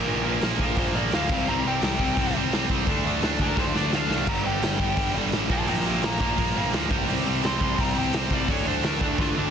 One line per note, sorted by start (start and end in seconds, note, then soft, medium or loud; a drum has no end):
0.00 0.41 A#4 loud
0.06 0.41 A#1 loud
0.06 0.22 A#2 loud
0.06 0.23 F3 loud
0.06 0.23 A#3 loud
0.23 0.40 A#2 medium
0.23 0.41 F3 medium
0.23 0.41 A#3 medium
0.41 0.59 A#1 medium
0.41 0.59 A#2 medium
0.41 0.59 F3 medium
0.41 0.60 A#3 loud
0.41 snare loud
0.41 open hi-hat medium
0.59 0.76 A#1 medium
0.59 0.76 A#2 medium
0.59 0.77 F3 medium
0.59 0.78 A#3 medium
0.59 0.79 A#4 loud
0.59 kick medium
0.77 0.94 A#1 loud
0.77 0.94 A#2 medium
0.77 0.94 F3 medium
0.77 0.95 A#3 loud
0.77 0.95 C5 medium
0.77 kick loud
0.77 open hi-hat medium
0.94 1.11 A#1 loud
0.94 1.12 A#2 medium
0.94 1.12 F3 medium
0.94 1.13 A#3 medium
0.94 1.14 D5 medium
1.11 1.28 D2 medium
1.11 1.29 A#2 medium
1.11 1.29 F3 medium
1.11 1.30 A#3 loud
1.11 1.47 F5 medium
1.11 snare loud
1.11 open hi-hat medium
1.29 1.46 C2 medium
1.29 1.46 C3 loud
1.29 1.47 G3 loud
1.29 1.47 C4 loud
1.29 kick loud
1.29 crash loud
1.47 1.64 C2 medium
1.47 1.63 C3 loud
1.47 1.64 G3 medium
1.47 1.64 C4 loud
1.47 1.65 A#5 medium
1.64 1.81 C2 medium
1.64 1.81 C3 medium
1.64 1.81 G3 medium
1.64 1.82 C4 medium
1.64 2.35 G5 loud
1.82 2.16 C2 medium
1.82 1.98 C3 medium
1.82 1.99 G3 medium
1.82 1.99 C4 medium
1.82 snare loud
1.82 open hi-hat medium
1.99 2.16 C3 medium
1.99 2.17 G3 medium
1.99 2.17 C4 loud
1.99 kick medium
2.17 2.34 C2 medium
2.17 2.34 C3 loud
2.17 2.34 G3 loud
2.17 2.34 C4 loud
2.17 kick loud
2.17 open hi-hat medium
2.35 2.52 C2 medium
2.35 2.51 C3 medium
2.35 2.52 G3 medium
2.35 2.52 C4 medium
2.52 2.69 C2 medium
2.52 2.68 C3 medium
2.52 2.69 G3 medium
2.52 2.69 C4 medium
2.52 snare loud
2.52 open hi-hat medium
2.69 2.86 C2 medium
2.69 2.86 C3 medium
2.69 2.87 G3 medium
2.69 2.87 C4 medium
2.69 kick medium
2.87 3.21 D2 loud
2.87 3.02 D3 medium
2.87 3.03 A3 loud
2.87 3.05 D4 loud
2.87 kick loud
2.87 open hi-hat medium
3.04 3.20 D3 medium
3.04 3.21 A3 medium
3.04 3.22 D4 medium
3.21 3.39 D2 medium
3.21 3.37 D3 medium
3.21 3.38 A3 medium
3.21 3.39 D4 medium
3.21 snare loud
3.21 open hi-hat medium
3.38 3.56 D2 loud
3.38 3.55 D3 medium
3.38 3.55 A3 medium
3.38 3.57 D4 loud
3.38 3.58 A#4 medium
3.38 kick medium
3.56 3.74 D2 medium
3.56 3.73 D3 loud
3.56 3.74 A3 medium
3.56 3.75 D4 loud
3.56 3.76 C5 medium
3.56 kick loud
3.56 snare medium
3.74 3.91 D2 loud
3.74 3.91 D3 medium
3.74 3.92 A3 medium
3.74 3.93 D4 medium
3.74 3.95 D5 medium
3.74 snare medium
3.91 4.09 D2 medium
3.91 4.08 D3 medium
3.91 4.09 A3 medium
3.91 4.10 D4 medium
3.91 4.28 F5 medium
3.91 snare loud
4.09 4.26 C2 medium
4.09 4.26 D3 medium
4.09 4.27 A3 medium
4.09 5.51 D4 loud
4.09 snare loud
4.27 4.44 G1 loud
4.27 4.43 G2 medium
4.27 4.44 D3 loud
4.27 4.44 G3 loud
4.27 4.45 A#5 medium
4.27 kick loud
4.27 crash loud
4.44 4.62 G1 medium
4.44 4.61 G2 medium
4.44 4.62 D3 medium
4.44 4.62 G3 medium
4.44 5.14 G5 loud
4.62 4.96 G1 medium
4.62 4.79 G2 medium
4.62 4.79 D3 medium
4.62 4.80 G3 medium
4.62 snare loud
4.62 open hi-hat medium
4.80 4.95 G2 medium
4.80 4.96 D3 medium
4.80 4.96 G3 loud
4.80 kick medium
4.96 5.14 G1 loud
4.96 5.13 G2 medium
4.96 5.14 D3 medium
4.96 5.14 G3 loud
4.96 kick loud
4.96 open hi-hat medium
5.14 5.32 G1 loud
5.14 5.32 G2 medium
5.14 5.32 D3 loud
5.14 5.32 G3 medium
5.32 5.49 A1 medium
5.32 5.50 G2 medium
5.32 5.50 D3 medium
5.32 5.50 G3 medium
5.32 snare loud
5.32 open hi-hat medium
5.50 5.67 A#1 medium
5.50 5.66 A#2 loud
5.50 5.67 F3 loud
5.50 5.68 A#3 loud
5.50 5.67 C5 medium
5.50 5.68 A5 loud
5.50 kick loud
5.67 6.02 A#1 loud
5.67 5.84 A#2 loud
5.67 5.84 F3 medium
5.67 5.85 A#3 loud
5.67 5.86 A#4 medium
5.67 5.87 G5 medium
5.67 open hi-hat medium
5.85 6.02 A#2 medium
5.85 6.02 F3 medium
5.85 6.03 A#3 medium
5.85 6.03 G4 medium
5.85 6.03 E5 medium
6.03 6.20 A#1 medium
6.03 6.19 A#2 medium
6.03 6.20 F3 medium
6.03 6.20 A#3 loud
6.03 6.72 A#5 medium
6.03 snare loud
6.03 open hi-hat medium
6.20 6.37 A#1 loud
6.20 6.36 A#2 medium
6.20 6.37 F3 medium
6.20 6.38 A#3 loud
6.20 kick medium
6.38 6.55 A#1 loud
6.38 6.54 A#2 medium
6.38 6.55 F3 medium
6.38 6.56 A#3 loud
6.38 kick loud
6.38 open hi-hat medium
6.55 6.73 A#1 loud
6.55 6.72 A#2 medium
6.55 6.73 F3 medium
6.55 6.73 A#3 loud
6.73 6.90 D2 loud
6.73 6.90 A#2 medium
6.73 6.90 F3 medium
6.73 6.90 A#3 medium
6.73 snare loud
6.73 open hi-hat medium
6.90 7.08 C2 medium
6.90 7.07 C3 loud
6.90 7.08 G3 loud
6.90 7.08 C4 loud
6.90 kick loud
7.08 7.26 C2 loud
7.08 7.24 C3 loud
7.08 7.25 G3 loud
7.08 7.25 C4 loud
7.08 open hi-hat medium
7.25 7.43 C2 medium
7.25 7.42 C3 medium
7.25 7.42 G3 medium
7.25 7.43 C4 medium
7.43 7.77 C2 medium
7.43 7.59 C3 medium
7.43 7.60 G3 medium
7.43 7.60 C4 loud
7.43 7.79 C6 loud
7.43 snare loud
7.43 open hi-hat medium
7.60 7.76 C3 medium
7.60 7.77 G3 loud
7.60 7.77 C4 medium
7.60 kick medium
7.77 7.95 C2 medium
7.77 7.94 C3 loud
7.77 7.95 G3 loud
7.77 7.96 C4 loud
7.77 7.97 A#5 loud
7.77 kick loud
7.77 open hi-hat medium
7.96 8.13 C2 loud
7.96 8.11 C3 medium
7.96 8.12 G3 medium
7.96 8.12 C4 loud
7.96 8.14 G5 loud
8.13 8.30 C2 loud
8.13 8.30 C3 medium
8.13 8.30 G3 medium
8.13 8.31 C4 medium
8.13 8.34 C5 medium
8.13 snare loud
8.13 open hi-hat medium
8.30 8.48 C2 medium
8.30 8.48 C3 medium
8.30 8.48 G3 loud
8.30 8.48 C4 loud
8.30 8.51 D5 loud
8.30 kick medium
8.48 8.82 D2 loud
8.48 8.66 D3 loud
8.48 8.67 A3 loud
8.48 8.67 D4 loud
8.48 8.67 C#5 medium
8.48 kick loud
8.48 open hi-hat medium
8.67 8.82 D3 medium
8.67 8.83 A3 medium
8.67 8.83 D4 medium
8.67 8.84 C5 medium
8.83 9.00 D2 loud
8.83 9.01 D3 medium
8.83 9.01 A3 medium
8.83 9.02 D4 loud
8.83 9.01 A#4 medium
8.83 snare loud
8.83 open hi-hat medium
9.01 9.17 D2 loud
9.01 9.18 D3 medium
9.01 9.19 A3 medium
9.01 9.19 D4 medium
9.01 9.19 D4 loud
9.01 kick medium
9.18 9.35 D2 loud
9.18 9.35 D3 medium
9.18 9.36 A3 loud
9.18 9.37 D4 loud
9.18 9.37 F4 loud
9.18 kick loud
9.18 snare medium
9.36 9.50 D2 loud
9.36 9.50 D3 medium
9.36 9.50 A3 loud
9.36 9.50 D4 loud